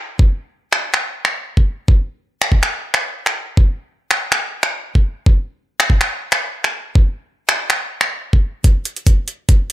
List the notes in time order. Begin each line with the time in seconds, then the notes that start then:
0.19 kick
0.73 finger snap
0.94 finger snap
1.25 finger snap
1.57 kick
1.88 kick
2.42 finger snap
2.52 kick
2.63 finger snap
2.94 finger snap
3.26 finger snap
3.57 kick
4.11 finger snap
4.32 finger snap
4.63 finger snap
4.95 kick
5.26 kick
5.80 finger snap
5.90 kick
6.01 finger snap
6.32 finger snap
6.64 finger snap
6.95 kick
7.49 finger snap
7.70 finger snap
8.01 finger snap
8.33 kick
8.64 kick, closed hi-hat
8.85 closed hi-hat
8.96 closed hi-hat
9.07 kick, closed hi-hat
9.28 closed hi-hat
9.49 kick, closed hi-hat